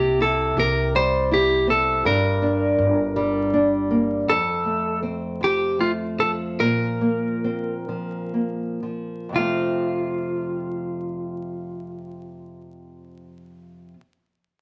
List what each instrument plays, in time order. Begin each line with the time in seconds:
Already playing: upright bass C2, nylon-string guitar C3 C4, clean electric guitar G4
0.20 nylon-string guitar E4, clean electric guitar A4
0.57 upright bass C2, nylon-string guitar G4, clean electric guitar A#4
0.95 nylon-string guitar G3, clean electric guitar C5
1.31 nylon-string guitar E4, clean electric guitar G4
1.68 nylon-string guitar C4, clean electric guitar A4
2.04 upright bass G1, nylon-string guitar G2, clean electric guitar A#4
2.42 nylon-string guitar D4
2.78 upright bass G1
3.16 nylon-string guitar G3
3.54 nylon-string guitar D4
3.90 nylon-string guitar A#3
4.28 nylon-string guitar F2, clean electric guitar A4
4.65 nylon-string guitar A3
5.03 nylon-string guitar C4
5.41 nylon-string guitar F3, clean electric guitar G4
5.79 nylon-string guitar A3, clean electric guitar F4
6.19 nylon-string guitar F3, clean electric guitar A4
6.59 nylon-string guitar A#2, clean electric guitar A#4
7.01 nylon-string guitar A#3
7.44 nylon-string guitar C4
7.88 nylon-string guitar F3
8.34 nylon-string guitar A#3
8.83 nylon-string guitar F3
9.29 nylon-string guitar F2 C3
9.35 nylon-string guitar F3 A3, clean electric guitar F4
9.39 nylon-string guitar C4